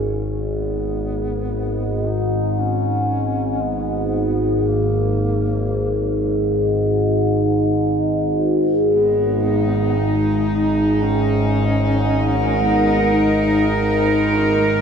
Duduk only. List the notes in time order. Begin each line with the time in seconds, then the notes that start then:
Already playing: C#4
0.50 B3
2.07 D#4
2.59 C#4
3.63 B3
4.67 A#3
8.93 B3
9.98 D#4
11.04 C#4
12.63 B3
13.14 D#4